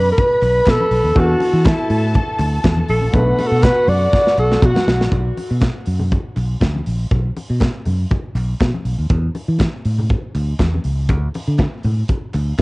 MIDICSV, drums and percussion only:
0, 0, Header, 1, 2, 480
1, 0, Start_track
1, 0, Key_signature, 2, "minor"
1, 0, Tempo, 496278
1, 1126, Time_signature, 4, 2, 24, 8
1, 12204, End_track
2, 0, Start_track
2, 0, Title_t, "Drums"
2, 171, Note_on_c, 9, 42, 61
2, 176, Note_on_c, 9, 36, 114
2, 179, Note_on_c, 9, 62, 52
2, 268, Note_off_c, 9, 42, 0
2, 273, Note_off_c, 9, 36, 0
2, 275, Note_off_c, 9, 62, 0
2, 410, Note_on_c, 9, 39, 68
2, 411, Note_on_c, 9, 46, 59
2, 418, Note_on_c, 9, 62, 37
2, 506, Note_off_c, 9, 39, 0
2, 508, Note_off_c, 9, 46, 0
2, 514, Note_off_c, 9, 62, 0
2, 640, Note_on_c, 9, 39, 85
2, 646, Note_on_c, 9, 63, 63
2, 647, Note_on_c, 9, 36, 102
2, 653, Note_on_c, 9, 42, 63
2, 661, Note_on_c, 9, 38, 98
2, 737, Note_off_c, 9, 39, 0
2, 743, Note_off_c, 9, 63, 0
2, 744, Note_off_c, 9, 36, 0
2, 750, Note_off_c, 9, 42, 0
2, 758, Note_off_c, 9, 38, 0
2, 778, Note_on_c, 9, 63, 73
2, 874, Note_off_c, 9, 63, 0
2, 882, Note_on_c, 9, 46, 73
2, 979, Note_off_c, 9, 46, 0
2, 998, Note_on_c, 9, 63, 58
2, 1095, Note_off_c, 9, 63, 0
2, 1119, Note_on_c, 9, 42, 61
2, 1121, Note_on_c, 9, 36, 115
2, 1128, Note_on_c, 9, 62, 57
2, 1215, Note_off_c, 9, 42, 0
2, 1218, Note_off_c, 9, 36, 0
2, 1225, Note_off_c, 9, 62, 0
2, 1358, Note_on_c, 9, 62, 62
2, 1370, Note_on_c, 9, 46, 75
2, 1454, Note_off_c, 9, 62, 0
2, 1467, Note_off_c, 9, 46, 0
2, 1592, Note_on_c, 9, 42, 63
2, 1592, Note_on_c, 9, 63, 71
2, 1601, Note_on_c, 9, 36, 127
2, 1604, Note_on_c, 9, 39, 108
2, 1614, Note_on_c, 9, 38, 115
2, 1689, Note_off_c, 9, 42, 0
2, 1689, Note_off_c, 9, 63, 0
2, 1698, Note_off_c, 9, 36, 0
2, 1701, Note_off_c, 9, 39, 0
2, 1711, Note_off_c, 9, 38, 0
2, 1836, Note_on_c, 9, 46, 68
2, 1933, Note_off_c, 9, 46, 0
2, 2072, Note_on_c, 9, 42, 64
2, 2080, Note_on_c, 9, 36, 106
2, 2082, Note_on_c, 9, 62, 57
2, 2168, Note_off_c, 9, 42, 0
2, 2177, Note_off_c, 9, 36, 0
2, 2179, Note_off_c, 9, 62, 0
2, 2313, Note_on_c, 9, 39, 67
2, 2315, Note_on_c, 9, 46, 64
2, 2318, Note_on_c, 9, 62, 43
2, 2410, Note_off_c, 9, 39, 0
2, 2412, Note_off_c, 9, 46, 0
2, 2415, Note_off_c, 9, 62, 0
2, 2551, Note_on_c, 9, 63, 65
2, 2555, Note_on_c, 9, 36, 103
2, 2558, Note_on_c, 9, 39, 73
2, 2558, Note_on_c, 9, 42, 57
2, 2567, Note_on_c, 9, 38, 107
2, 2648, Note_off_c, 9, 63, 0
2, 2652, Note_off_c, 9, 36, 0
2, 2655, Note_off_c, 9, 39, 0
2, 2655, Note_off_c, 9, 42, 0
2, 2663, Note_off_c, 9, 38, 0
2, 2680, Note_on_c, 9, 63, 72
2, 2777, Note_off_c, 9, 63, 0
2, 2790, Note_on_c, 9, 46, 85
2, 2887, Note_off_c, 9, 46, 0
2, 2912, Note_on_c, 9, 63, 63
2, 3009, Note_off_c, 9, 63, 0
2, 3031, Note_on_c, 9, 42, 66
2, 3032, Note_on_c, 9, 62, 56
2, 3033, Note_on_c, 9, 36, 114
2, 3127, Note_off_c, 9, 42, 0
2, 3128, Note_off_c, 9, 62, 0
2, 3129, Note_off_c, 9, 36, 0
2, 3275, Note_on_c, 9, 62, 67
2, 3282, Note_on_c, 9, 46, 78
2, 3372, Note_off_c, 9, 62, 0
2, 3378, Note_off_c, 9, 46, 0
2, 3504, Note_on_c, 9, 63, 66
2, 3506, Note_on_c, 9, 42, 67
2, 3513, Note_on_c, 9, 36, 127
2, 3521, Note_on_c, 9, 39, 105
2, 3528, Note_on_c, 9, 38, 108
2, 3601, Note_off_c, 9, 63, 0
2, 3603, Note_off_c, 9, 42, 0
2, 3609, Note_off_c, 9, 36, 0
2, 3618, Note_off_c, 9, 39, 0
2, 3624, Note_off_c, 9, 38, 0
2, 3745, Note_on_c, 9, 64, 68
2, 3751, Note_on_c, 9, 46, 75
2, 3841, Note_off_c, 9, 64, 0
2, 3848, Note_off_c, 9, 46, 0
2, 3996, Note_on_c, 9, 62, 55
2, 3997, Note_on_c, 9, 36, 106
2, 4006, Note_on_c, 9, 38, 60
2, 4093, Note_off_c, 9, 62, 0
2, 4094, Note_off_c, 9, 36, 0
2, 4103, Note_off_c, 9, 38, 0
2, 4130, Note_on_c, 9, 38, 60
2, 4227, Note_off_c, 9, 38, 0
2, 4239, Note_on_c, 9, 39, 75
2, 4336, Note_off_c, 9, 39, 0
2, 4369, Note_on_c, 9, 38, 70
2, 4465, Note_off_c, 9, 38, 0
2, 4472, Note_on_c, 9, 36, 114
2, 4472, Note_on_c, 9, 63, 69
2, 4478, Note_on_c, 9, 39, 90
2, 4568, Note_off_c, 9, 36, 0
2, 4568, Note_off_c, 9, 63, 0
2, 4575, Note_off_c, 9, 39, 0
2, 4600, Note_on_c, 9, 63, 65
2, 4606, Note_on_c, 9, 38, 92
2, 4697, Note_off_c, 9, 63, 0
2, 4703, Note_off_c, 9, 38, 0
2, 4720, Note_on_c, 9, 38, 105
2, 4817, Note_off_c, 9, 38, 0
2, 4847, Note_on_c, 9, 38, 81
2, 4943, Note_off_c, 9, 38, 0
2, 4947, Note_on_c, 9, 42, 47
2, 4951, Note_on_c, 9, 36, 105
2, 4951, Note_on_c, 9, 62, 49
2, 5043, Note_off_c, 9, 42, 0
2, 5047, Note_off_c, 9, 36, 0
2, 5048, Note_off_c, 9, 62, 0
2, 5197, Note_on_c, 9, 62, 52
2, 5199, Note_on_c, 9, 46, 63
2, 5294, Note_off_c, 9, 62, 0
2, 5295, Note_off_c, 9, 46, 0
2, 5422, Note_on_c, 9, 42, 55
2, 5425, Note_on_c, 9, 63, 55
2, 5432, Note_on_c, 9, 36, 113
2, 5440, Note_on_c, 9, 39, 92
2, 5444, Note_on_c, 9, 38, 95
2, 5519, Note_off_c, 9, 42, 0
2, 5522, Note_off_c, 9, 63, 0
2, 5529, Note_off_c, 9, 36, 0
2, 5536, Note_off_c, 9, 39, 0
2, 5541, Note_off_c, 9, 38, 0
2, 5665, Note_on_c, 9, 46, 64
2, 5762, Note_off_c, 9, 46, 0
2, 5796, Note_on_c, 9, 64, 73
2, 5892, Note_off_c, 9, 64, 0
2, 5914, Note_on_c, 9, 42, 58
2, 5919, Note_on_c, 9, 36, 103
2, 5925, Note_on_c, 9, 62, 52
2, 6011, Note_off_c, 9, 42, 0
2, 6016, Note_off_c, 9, 36, 0
2, 6021, Note_off_c, 9, 62, 0
2, 6152, Note_on_c, 9, 62, 37
2, 6158, Note_on_c, 9, 39, 65
2, 6163, Note_on_c, 9, 46, 53
2, 6249, Note_off_c, 9, 62, 0
2, 6255, Note_off_c, 9, 39, 0
2, 6259, Note_off_c, 9, 46, 0
2, 6388, Note_on_c, 9, 63, 54
2, 6396, Note_on_c, 9, 36, 87
2, 6397, Note_on_c, 9, 42, 57
2, 6401, Note_on_c, 9, 39, 68
2, 6405, Note_on_c, 9, 38, 95
2, 6485, Note_off_c, 9, 63, 0
2, 6493, Note_off_c, 9, 36, 0
2, 6494, Note_off_c, 9, 42, 0
2, 6497, Note_off_c, 9, 39, 0
2, 6502, Note_off_c, 9, 38, 0
2, 6526, Note_on_c, 9, 63, 61
2, 6623, Note_off_c, 9, 63, 0
2, 6637, Note_on_c, 9, 46, 69
2, 6733, Note_off_c, 9, 46, 0
2, 6877, Note_on_c, 9, 42, 50
2, 6877, Note_on_c, 9, 62, 48
2, 6878, Note_on_c, 9, 36, 115
2, 6973, Note_off_c, 9, 42, 0
2, 6973, Note_off_c, 9, 62, 0
2, 6975, Note_off_c, 9, 36, 0
2, 7122, Note_on_c, 9, 46, 64
2, 7124, Note_on_c, 9, 62, 51
2, 7219, Note_off_c, 9, 46, 0
2, 7220, Note_off_c, 9, 62, 0
2, 7349, Note_on_c, 9, 42, 54
2, 7352, Note_on_c, 9, 63, 63
2, 7360, Note_on_c, 9, 36, 110
2, 7371, Note_on_c, 9, 38, 97
2, 7371, Note_on_c, 9, 39, 97
2, 7446, Note_off_c, 9, 42, 0
2, 7449, Note_off_c, 9, 63, 0
2, 7457, Note_off_c, 9, 36, 0
2, 7468, Note_off_c, 9, 38, 0
2, 7468, Note_off_c, 9, 39, 0
2, 7597, Note_on_c, 9, 46, 62
2, 7599, Note_on_c, 9, 64, 60
2, 7694, Note_off_c, 9, 46, 0
2, 7695, Note_off_c, 9, 64, 0
2, 7842, Note_on_c, 9, 42, 59
2, 7842, Note_on_c, 9, 62, 49
2, 7847, Note_on_c, 9, 36, 107
2, 7939, Note_off_c, 9, 42, 0
2, 7939, Note_off_c, 9, 62, 0
2, 7943, Note_off_c, 9, 36, 0
2, 8079, Note_on_c, 9, 62, 36
2, 8088, Note_on_c, 9, 39, 67
2, 8088, Note_on_c, 9, 46, 55
2, 8175, Note_off_c, 9, 62, 0
2, 8185, Note_off_c, 9, 39, 0
2, 8185, Note_off_c, 9, 46, 0
2, 8321, Note_on_c, 9, 63, 57
2, 8323, Note_on_c, 9, 36, 97
2, 8324, Note_on_c, 9, 39, 67
2, 8325, Note_on_c, 9, 42, 57
2, 8334, Note_on_c, 9, 38, 92
2, 8418, Note_off_c, 9, 63, 0
2, 8420, Note_off_c, 9, 36, 0
2, 8421, Note_off_c, 9, 39, 0
2, 8422, Note_off_c, 9, 42, 0
2, 8430, Note_off_c, 9, 38, 0
2, 8455, Note_on_c, 9, 63, 58
2, 8552, Note_off_c, 9, 63, 0
2, 8561, Note_on_c, 9, 46, 65
2, 8658, Note_off_c, 9, 46, 0
2, 8797, Note_on_c, 9, 42, 51
2, 8802, Note_on_c, 9, 36, 109
2, 8808, Note_on_c, 9, 62, 49
2, 8893, Note_off_c, 9, 42, 0
2, 8898, Note_off_c, 9, 36, 0
2, 8904, Note_off_c, 9, 62, 0
2, 9042, Note_on_c, 9, 62, 56
2, 9047, Note_on_c, 9, 46, 63
2, 9138, Note_off_c, 9, 62, 0
2, 9143, Note_off_c, 9, 46, 0
2, 9272, Note_on_c, 9, 63, 60
2, 9273, Note_on_c, 9, 42, 54
2, 9284, Note_on_c, 9, 36, 111
2, 9290, Note_on_c, 9, 39, 102
2, 9295, Note_on_c, 9, 38, 99
2, 9369, Note_off_c, 9, 63, 0
2, 9370, Note_off_c, 9, 42, 0
2, 9381, Note_off_c, 9, 36, 0
2, 9386, Note_off_c, 9, 39, 0
2, 9392, Note_off_c, 9, 38, 0
2, 9525, Note_on_c, 9, 46, 69
2, 9621, Note_off_c, 9, 46, 0
2, 9656, Note_on_c, 9, 64, 70
2, 9753, Note_off_c, 9, 64, 0
2, 9763, Note_on_c, 9, 42, 60
2, 9767, Note_on_c, 9, 62, 52
2, 9770, Note_on_c, 9, 36, 105
2, 9859, Note_off_c, 9, 42, 0
2, 9864, Note_off_c, 9, 62, 0
2, 9866, Note_off_c, 9, 36, 0
2, 10008, Note_on_c, 9, 46, 57
2, 10014, Note_on_c, 9, 39, 60
2, 10105, Note_off_c, 9, 46, 0
2, 10111, Note_off_c, 9, 39, 0
2, 10246, Note_on_c, 9, 36, 93
2, 10246, Note_on_c, 9, 42, 56
2, 10250, Note_on_c, 9, 39, 75
2, 10255, Note_on_c, 9, 38, 88
2, 10256, Note_on_c, 9, 63, 58
2, 10343, Note_off_c, 9, 36, 0
2, 10343, Note_off_c, 9, 42, 0
2, 10347, Note_off_c, 9, 39, 0
2, 10351, Note_off_c, 9, 38, 0
2, 10353, Note_off_c, 9, 63, 0
2, 10387, Note_on_c, 9, 63, 59
2, 10484, Note_off_c, 9, 63, 0
2, 10485, Note_on_c, 9, 46, 67
2, 10581, Note_off_c, 9, 46, 0
2, 10724, Note_on_c, 9, 42, 57
2, 10726, Note_on_c, 9, 36, 102
2, 10738, Note_on_c, 9, 62, 53
2, 10820, Note_off_c, 9, 42, 0
2, 10823, Note_off_c, 9, 36, 0
2, 10835, Note_off_c, 9, 62, 0
2, 10971, Note_on_c, 9, 46, 72
2, 10979, Note_on_c, 9, 62, 58
2, 11067, Note_off_c, 9, 46, 0
2, 11076, Note_off_c, 9, 62, 0
2, 11195, Note_on_c, 9, 42, 60
2, 11204, Note_on_c, 9, 63, 66
2, 11208, Note_on_c, 9, 36, 112
2, 11209, Note_on_c, 9, 39, 96
2, 11217, Note_on_c, 9, 38, 95
2, 11292, Note_off_c, 9, 42, 0
2, 11301, Note_off_c, 9, 63, 0
2, 11305, Note_off_c, 9, 36, 0
2, 11306, Note_off_c, 9, 39, 0
2, 11314, Note_off_c, 9, 38, 0
2, 11445, Note_on_c, 9, 46, 57
2, 11461, Note_on_c, 9, 64, 62
2, 11542, Note_off_c, 9, 46, 0
2, 11557, Note_off_c, 9, 64, 0
2, 11686, Note_on_c, 9, 42, 58
2, 11695, Note_on_c, 9, 36, 100
2, 11697, Note_on_c, 9, 62, 51
2, 11783, Note_off_c, 9, 42, 0
2, 11792, Note_off_c, 9, 36, 0
2, 11794, Note_off_c, 9, 62, 0
2, 11933, Note_on_c, 9, 46, 57
2, 11935, Note_on_c, 9, 39, 70
2, 11936, Note_on_c, 9, 62, 37
2, 12029, Note_off_c, 9, 46, 0
2, 12032, Note_off_c, 9, 39, 0
2, 12033, Note_off_c, 9, 62, 0
2, 12170, Note_on_c, 9, 63, 65
2, 12171, Note_on_c, 9, 39, 72
2, 12173, Note_on_c, 9, 36, 99
2, 12173, Note_on_c, 9, 42, 57
2, 12204, Note_off_c, 9, 36, 0
2, 12204, Note_off_c, 9, 39, 0
2, 12204, Note_off_c, 9, 42, 0
2, 12204, Note_off_c, 9, 63, 0
2, 12204, End_track
0, 0, End_of_file